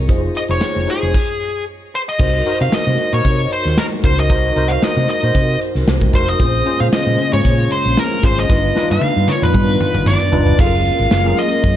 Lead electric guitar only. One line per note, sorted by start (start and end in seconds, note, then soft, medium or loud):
0.37 0.42 D#5 medium
0.51 0.90 C#5 medium
0.90 1.64 G#4 medium
1.95 2.00 C5 medium
2.09 2.57 D#5 medium
2.61 2.73 F5 loud
2.74 3.14 D#5 loud
3.14 3.49 C#5 medium
3.53 3.79 C5 medium
3.78 3.85 A#4 medium
4.05 4.19 C5 medium
4.20 4.69 D#5 loud
4.68 4.83 F5 medium
4.68 4.71 F#5 medium
4.84 5.07 D#5 medium
5.10 5.58 D#5 medium
6.15 6.29 C5 medium
6.29 6.82 D#5 loud
6.80 6.85 F5 loud
6.93 7.33 D#5 loud
7.33 7.72 C#5 medium
7.72 7.98 C5 medium
7.99 8.25 A#4 loud
8.25 8.39 C5 medium
8.40 8.87 D#5 loud
8.91 9.30 F5 loud
9.29 9.43 C#5 medium
9.43 10.29 B4 medium
10.07 10.61 D5 medium
10.60 11.40 F5 medium
11.39 11.77 D#5 medium